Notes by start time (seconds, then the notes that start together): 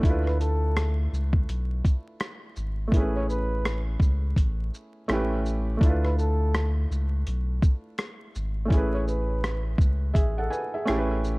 0.00 D2 A3 D4 E4, kick
0.05 F4, closed hi-hat
0.10 B4
0.26 B4, cross-stick
0.40 A4, closed hi-hat, shaker
0.77 cross-stick, closed hi-hat
1.13 C#2, shaker
1.33 kick
1.49 B1, closed hi-hat
1.85 kick, closed hi-hat, shaker
2.20 cross-stick, closed hi-hat
2.56 G#1, shaker
2.88 A3 B3
2.92 A1 E4, kick, closed hi-hat
2.97 C#4 G#4 B4
3.15 C#5
3.29 B4, shaker
3.65 cross-stick, closed hi-hat
4.00 C#2, kick, shaker
4.36 A1, kick, closed hi-hat
4.74 shaker
5.08 A1 A3 C#4 E4, cross-stick, closed hi-hat
5.13 G4 B4
5.46 shaker
5.77 A3 D4, kick
5.82 D2 E4, closed hi-hat
5.86 F4 B4
6.04 B4, cross-stick
6.18 A4, shaker
6.54 cross-stick, closed hi-hat
6.91 C#2, shaker
7.27 B1, closed hi-hat
7.62 kick, shaker
7.98 cross-stick, closed hi-hat
8.35 G#1, shaker
8.65 A3 C#4
8.70 A1 E4 G#4, kick, closed hi-hat
8.77 B4
8.93 C#5
9.08 B4, shaker
9.44 cross-stick, closed hi-hat
9.78 C#2, kick, shaker
10.14 A1 G#4 E5, kick, closed hi-hat
10.38 A4 F#5
10.50 B4 G#5, shaker
10.74 G#4 E5
10.85 A1 A3 C#4 E4 G4, cross-stick, closed hi-hat
10.91 A4
10.98 B4
11.24 shaker